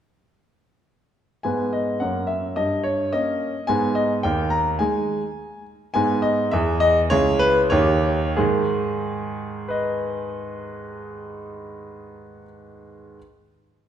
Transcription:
1.43 G#2 G#3 B3 B4 G#5
1.73 D#5
2.00 F#2 A#3 C#4 A#4 F#5
2.27 E5
2.56 G2 D#5
2.84 C#5
3.13 A#3 C#4 A#4 D#5
3.67 G#2 B3 D#4 G#4 G#5
3.95 D#5
4.23 D#2 A#3 D#4 A#4 G5
4.50 A#5
4.79 G#3 D#4 G#4 G#5
5.94 G#2 B3 D#4 G#4 G#5
6.22 D#5
6.51 E2 B3 E4 G#4 E5
6.80 D#5
7.10 C#2 C#4 E4 G#4 C#5
7.39 B4
7.70 D#2 A#3 D#4 G4 C#5
8.37 G#2 D#3 G#4
9.68 B4 D#5

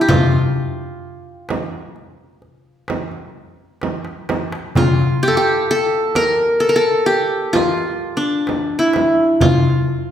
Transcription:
Already playing: D4 E4
0.01 G4
0.09 F4, darbuka dum, frame drum
0.56 darbuka ka
1.49 darbuka tek, frame drum
1.96 darbuka ka
2.42 darbuka ka
2.88 darbuka tek, frame drum
3.11 darbuka ka
3.82 darbuka tek, frame drum
4.05 darbuka ka
4.29 darbuka tek, frame drum
4.52 darbuka ka
4.75 F4, darbuka dum, frame drum
5.22 G4, darbuka ka
5.28 A4
5.37 G4
5.71 A4
6.15 A#4, darbuka tek, frame drum
6.60 A4, darbuka ka
6.69 A#4
6.76 A4
7.06 G4
7.53 F4, darbuka tek, frame drum
7.78 darbuka ka
8.01 darbuka ka
8.17 D4
8.47 darbuka tek, frame drum
8.79 E4
8.93 darbuka tek, frame drum
9.41 F4, darbuka dum, frame drum
9.88 darbuka ka

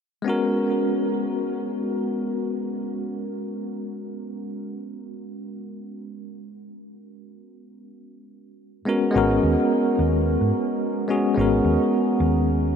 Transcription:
0.22 G#3 B3 C#4
0.28 F#4 A#4
8.85 G#3 B3 C#4 F#4 A#4
9.11 G#3 B3 C#4
9.15 G#1 F#4 A#4
9.43 D#2
9.99 D#2
10.41 G#2
11.08 G#3 B3 C#4 F#4 G#4
11.34 G#1 G#3 B3 C#4
11.39 F#4 A#4
11.64 D#2
12.20 D#2

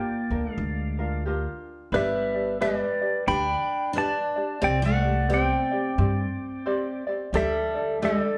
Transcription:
Already playing: A#3 D4 F4 G4 A#4 D5 G5
0.30 D2 D4 F4 A#4
0.52 G#3 F5
0.58 D2
0.99 D4 F4 A#4
1.25 D4 F4 G4 A#4
1.92 G1 G3 D4 G4 B4 D5 E5
2.34 D4 G4 D5
2.61 G3 D4 G4 B4 D5
3.01 D4 G4 D5
3.27 D2 D4 G4 B4 D5 G5 B5
3.93 D4 G4 B4 D5
3.98 D5 A5
4.36 D4 G4 D5
4.61 C2 C4 G4 C5 D5 G5
4.82 A3 F#5
4.86 D5
5.02 C4 G4 D5
5.29 C4 G4 C5 D5
5.34 D5 G5
5.72 C4 G4 D5
5.98 G2 C4 G4 C5 D5
6.66 C4 G4 C5 D5
7.07 C4 G4 D5
7.33 D2 G3 D4 G4 A4 D5
7.37 E5
7.75 D4 A4 D5
8.02 G3 D4 G4 A4 D5

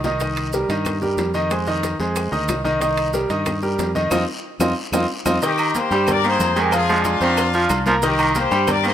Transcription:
Already playing: C2
0.04 D#3 D#4 D#5, low bongo, high conga, short guiro, maracas
0.20 D#3 D#4 D#5, high bongo, high conga, high timbale, long guiro, maracas
0.36 high bongo, high conga, high timbale, claves, maracas
0.53 G3 G4 A#4, high bongo, high conga, short guiro, maracas
0.69 G2 D#3 D#4 D#5, high bongo, high timbale, short guiro, maracas
0.85 high bongo, high conga, low conga, high timbale, long guiro, claves, maracas
1.02 G3 G4 A#4, high conga, low conga, maracas
1.17 F2, high bongo, low bongo, high conga, high timbale, short guiro, maracas
1.34 D#3 D#4 D#5, high bongo, short guiro, maracas
1.51 G#3 G#4 C5, high bongo, high conga, high timbale, long guiro, claves, maracas
1.67 D#3 D#4 D#5, high bongo, high conga, maracas
1.83 high bongo, high conga, high timbale, short guiro, maracas
1.99 F2 G#3 G#4 C5, high bongo, short guiro, maracas
2.16 high bongo, high conga, high timbale, long guiro, claves, maracas
2.32 D2 D#3 D#4 D#5, high conga, maracas
2.48 C2, high bongo, low bongo, high conga, high timbale, short guiro, claves, maracas
2.64 D#3 D#4 D#5, high bongo, high conga, short guiro, maracas
2.80 D#3 D#4 D#5, high bongo, high timbale, long guiro, maracas
2.97 high bongo, high conga, high timbale, claves, maracas
3.13 G3 G4 A#4, high bongo, high conga, short guiro, maracas
3.30 G2 D#3 D#4 D#5, high bongo, high timbale, short guiro, maracas
3.46 high bongo, high conga, low conga, high timbale, long guiro, claves, maracas
3.62 G3 G4 A#4, high conga, maracas
3.79 F2, high bongo, low bongo, high conga, high timbale, low timbale, short guiro, maracas
3.95 D#3 D#4 D#5, high bongo, high conga, short guiro, maracas
4.11 F2 C4 D#4 F4, low bongo, high conga, high timbale, long guiro, claves, maracas
4.60 F2 C4 D#4 F4, low bongo, high conga, high timbale, long guiro, claves, maracas
4.92 F2 C4 D#4 F4, low bongo, high conga, high timbale, long guiro, claves, maracas
5.26 F2 C4 D#4 F4, low bongo, high conga, high timbale, long guiro, claves, maracas
5.42 D#3 D#4 G4 D#5, cowbell, high conga, low agogo, long guiro, maracas
5.58 D#3, high conga, low agogo, claves, maracas
5.75 A#3 G4 A#4 C5 A#5, cowbell, high conga, low agogo, short guiro, maracas
5.91 G2 G3 G4 G5, cowbell, short guiro, maracas
6.07 A#4 D5, cowbell, high conga, low conga, low agogo, long guiro, claves, maracas
6.24 D#3 A#3 G#4 A#4 C5 A#5, high conga, maracas
6.39 F2, cowbell, high conga, low timbale, low agogo, short guiro, maracas
6.56 D#3 G#3 G4 G#4 A#4 G#5, cowbell, low agogo, short guiro, maracas
6.71 F3 F4 G#4 F5, cowbell, low agogo, long guiro, claves, maracas
6.89 F3 G#3 D4 F4 G#4 G#5, high conga, maracas
7.04 cowbell, high conga, low agogo, short guiro, maracas
7.21 F2 D#3 C4 C5 C6, high conga, short guiro, maracas
7.37 cowbell, high conga, low agogo, long guiro, claves, maracas
7.53 F3 F4 F5 F6, high conga, maracas
7.69 C2, cowbell, high conga, low agogo, short guiro, claves, maracas
7.86 F3 A#3 A#4 A#5, cowbell, high conga, low agogo, short guiro, maracas
8.02 D#3 D#4 G4 D#5, cowbell, high conga, low agogo, long guiro, maracas
8.19 D#3, high conga, low agogo, claves, maracas
8.35 A#3 G4 A#4 C5 A#5, cowbell, high conga, low agogo, short guiro, maracas
8.51 G2 G3 G4 G5, cowbell, high conga, short guiro, maracas
8.67 A#4 D5, cowbell, high conga, low conga, low agogo, long guiro, claves, maracas
8.83 D#3 A#3 G#4 A#4 C5 A#5, high conga, maracas

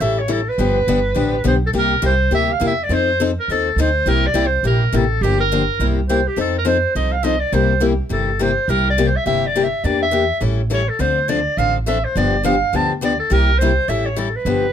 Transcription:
0.00 A1 E3 G3 C#4 E4 A4 E5
0.19 C#5
0.28 E3 G3 C#4 E4 A4
0.49 B4
0.58 G1 D3 F3 B3 D4 G4
0.87 G1 D3 F3 B3 D4 G4
1.15 A1 D3 F3 B3 D4 G4
1.44 B1 D3 F3 B3 D4 G4
1.48 C5
1.67 A4
1.73 C2 C3 G3 A#3 E4 G4
1.78 A#4
2.02 C2 C3 G3 A#3 E4 G4 C5
2.31 D2 C3 G3 A#3 E4 G4 E5
2.52 F5
2.60 E2 C3 G3 A#3 E4 G4
2.67 E5
2.83 D5
2.89 F2 F3 C4 D#4 A4
2.94 C5
3.20 F3 C4 D#4 A4
3.40 A#4
3.48 D#2 F3 C4 D#4 A4
3.76 D2 F3 C4 D#4 A4
3.81 C5
4.06 C2 C3 G3 A#3 E4 G4 A#4
4.27 D5
4.34 C2 C3 G3 A#3 E4 G4
4.46 C5
4.63 A#1 C3 G3 A#3 E4 G4 A#4
4.93 A1 C3 G3 A#3 E4 G4 A4
5.21 G1 D3 F3 A#3 D4 G4
5.40 A#4
5.52 D3 F3 A#3 D4 G4
5.79 C2 C3 G3 A#3 E4 G4
6.09 C3 G3 A#3 E4 G4 C5
6.28 G4
6.36 F2 F3 C4 D#4 A4
6.41 A4
6.58 A#4
6.65 F3 C4 D#4 A4 C5
6.95 C2 F3 C4 D#4 A4 D#5
7.12 F5
7.23 F3 C4 D#4 A4 D#5
7.39 D5
7.52 C2 C3 G3 A#3 E4 G4 C5
7.80 C3 G3 A#3 E4 G4
8.09 G1 C3 G3 A#3 E4 G4 A4
8.39 C3 G3 A#3 E4 G4 C5
8.68 C2 C3 G3 A#3 E4 G4 A#4
8.90 D5
8.98 C3 G3 A#3 E4 G4
9.07 C5
9.16 E5
9.26 G1 C3 G3 A#3 E4 G4 E5
9.47 D5
9.56 C3 G3 A#3 E4 G4
9.64 E5
9.84 E2 E3 A#3 D4 G4 D5
10.02 E5
10.11 E3 A#3 D4 G4
10.41 A1 E3 G3 C#4 E4 A4
10.70 E3 G3 C#4 E4 A4
10.74 C#5
10.89 A4
10.99 D2 D3 F3 C4 D4 A4 C5
11.28 D3 F3 C4 D4 A4 D5
11.57 A1 D3 F3 C4 D4 A4 F5
11.86 D3 F3 C4 D4 A4 E5
12.04 C5
12.16 G1 D3 F3 B3 D4 G4 D5
12.43 D3 F3 B3 D4 G4 F5
12.73 D2 D3 F3 B3 D4 G4 A5
13.01 D3 F3 B3 D4 G4 D5
13.19 A4
13.30 C2 C3 G3 A#3 E4 G4 A#4
13.58 C3 G3 A#3 G4 C5
13.62 E4
13.88 A1 E3 G3 C#4 E4 A4 E5
14.06 C#5
14.16 E3 G3 C#4 E4 A4
14.36 B4
14.45 G1 D3 F3 B3 D4 G4

